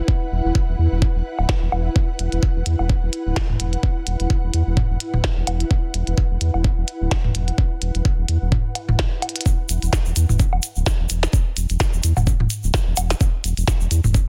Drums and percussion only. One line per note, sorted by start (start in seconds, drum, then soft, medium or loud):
0.08 kick loud
0.55 kick loud
1.02 kick loud
1.39 low woodblock medium
1.49 kick loud
1.49 snare loud
1.72 low woodblock medium
1.96 kick loud
2.19 closed hi-hat medium
2.32 closed hi-hat soft
2.43 kick loud
2.66 closed hi-hat medium
2.79 low woodblock soft
2.90 kick loud
3.13 closed hi-hat medium
3.36 kick loud
3.36 snare loud
3.49 mid tom medium
3.60 closed hi-hat medium
3.73 closed hi-hat soft
3.83 kick loud
4.07 closed hi-hat medium
4.20 closed hi-hat soft
4.30 kick loud
4.54 closed hi-hat medium
4.77 kick loud
4.77 mid tom medium
5.00 closed hi-hat medium
5.14 mid tom medium
5.24 kick loud
5.24 snare loud
5.47 closed hi-hat medium
5.47 low woodblock medium
5.60 closed hi-hat soft
5.71 kick loud
5.94 closed hi-hat medium
6.07 closed hi-hat soft
6.18 kick loud
6.41 closed hi-hat medium
6.54 low woodblock soft
6.64 kick loud
6.88 closed hi-hat medium
7.11 kick loud
7.11 snare loud
7.24 mid tom medium
7.35 closed hi-hat medium
7.48 closed hi-hat soft
7.58 kick loud
7.82 closed hi-hat medium
7.95 closed hi-hat soft
8.05 kick loud
8.28 closed hi-hat medium
8.52 kick loud
8.52 mid tom medium
8.75 closed hi-hat medium
8.75 low woodblock medium
8.89 mid tom medium
8.99 kick loud
8.99 snare loud
9.22 closed hi-hat medium
9.22 low woodblock medium
9.29 closed hi-hat medium
9.36 closed hi-hat medium
9.41 closed hi-hat medium
9.46 kick loud
9.46 shaker medium
9.69 closed hi-hat loud
9.69 shaker loud
9.82 closed hi-hat soft
9.82 shaker soft
9.93 kick loud
9.93 snare loud
9.93 shaker medium
10.06 shaker soft
10.16 closed hi-hat medium
10.16 shaker medium
10.29 mid tom medium
10.29 shaker soft
10.39 kick loud
10.39 shaker soft
10.53 low woodblock medium
10.63 closed hi-hat medium
10.63 shaker medium
10.76 shaker soft
10.86 kick loud
10.86 snare loud
10.86 shaker medium
11.09 closed hi-hat medium
11.09 shaker medium
11.23 snare medium
11.23 closed hi-hat soft
11.23 shaker soft
11.33 kick loud
11.33 shaker medium
11.57 closed hi-hat loud
11.57 shaker loud
11.69 closed hi-hat soft
11.69 shaker soft
11.80 kick loud
11.80 snare loud
11.80 shaker soft
11.93 shaker soft
12.03 closed hi-hat loud
12.03 shaker loud
12.17 mid tom medium
12.17 low woodblock medium
12.17 shaker soft
12.27 kick loud
12.27 shaker medium
12.40 mid tom loud
12.50 closed hi-hat loud
12.50 shaker loud
12.63 shaker soft
12.74 kick loud
12.74 snare loud
12.74 shaker medium
12.97 closed hi-hat medium
12.97 low woodblock medium
12.97 shaker loud
13.10 snare medium
13.10 closed hi-hat soft
13.10 shaker soft
13.20 kick loud
13.20 shaker medium
13.44 closed hi-hat loud
13.44 shaker medium
13.57 closed hi-hat soft
13.57 shaker soft
13.67 kick loud
13.67 snare loud
13.67 shaker medium
13.81 shaker soft
13.91 closed hi-hat medium
13.91 shaker medium
14.04 mid tom medium
14.04 shaker soft
14.14 kick loud
14.14 shaker medium